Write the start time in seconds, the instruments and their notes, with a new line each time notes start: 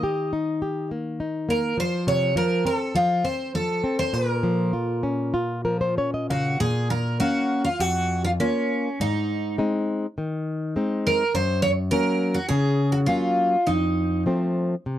Already playing: nylon-string guitar D#3, twelve-string acoustic guitar D#5
0.03 nylon-string guitar G4
0.33 nylon-string guitar D#4
0.62 nylon-string guitar G4
0.91 nylon-string guitar A#3
1.20 nylon-string guitar D#4
1.49 nylon-string guitar A#3, twelve-string acoustic guitar A#4
1.77 nylon-string guitar F3, twelve-string acoustic guitar C5
2.07 nylon-string guitar C3, twelve-string acoustic guitar C#5
2.36 nylon-string guitar F3, twelve-string acoustic guitar A#4
2.65 nylon-string guitar C4, twelve-string acoustic guitar A4
2.95 nylon-string guitar F3, twelve-string acoustic guitar F4
3.24 nylon-string guitar C4, twelve-string acoustic guitar C5
3.55 nylon-string guitar F3, twelve-string acoustic guitar A4
3.84 nylon-string guitar C4
3.99 twelve-string acoustic guitar C5
4.13 nylon-string guitar A#2, twelve-string acoustic guitar A#4
4.43 nylon-string guitar F3
4.73 nylon-string guitar F4
5.03 nylon-string guitar C#4
5.34 nylon-string guitar F4
5.65 nylon-string guitar F3 A#4
5.81 nylon-string guitar C5
5.97 nylon-string guitar C#4 C#5
6.14 nylon-string guitar D#5
6.30 nylon-string guitar C#3 F5, twelve-string acoustic guitar F#4
6.60 nylon-string guitar A#2, twelve-string acoustic guitar G#4
6.90 twelve-string acoustic guitar A#4
7.20 nylon-string guitar A#3 C#4 F5, twelve-string acoustic guitar F#4
7.65 twelve-string acoustic guitar F4
7.80 nylon-string guitar F2, twelve-string acoustic guitar F#4
8.25 twelve-string acoustic guitar F4
8.40 nylon-string guitar A#3 C#4 F4, twelve-string acoustic guitar C#4
9.00 nylon-string guitar G#2, twelve-string acoustic guitar D#4
9.58 nylon-string guitar G#3 C4 D#4
10.18 nylon-string guitar D#3
10.76 nylon-string guitar G#3 C4 D#4
11.07 twelve-string acoustic guitar A#4
11.35 nylon-string guitar F#2, twelve-string acoustic guitar C5
11.62 twelve-string acoustic guitar C#5
11.91 nylon-string guitar F#3 A#3 C#4, twelve-string acoustic guitar A#4
12.34 twelve-string acoustic guitar F#4
12.49 nylon-string guitar C#3, twelve-string acoustic guitar G#4
12.92 twelve-string acoustic guitar F#4
13.06 nylon-string guitar F#3 A#3 C#4, twelve-string acoustic guitar F4
13.67 nylon-string guitar F2, twelve-string acoustic guitar D#4
14.26 nylon-string guitar F3 A3 C4
14.86 nylon-string guitar C3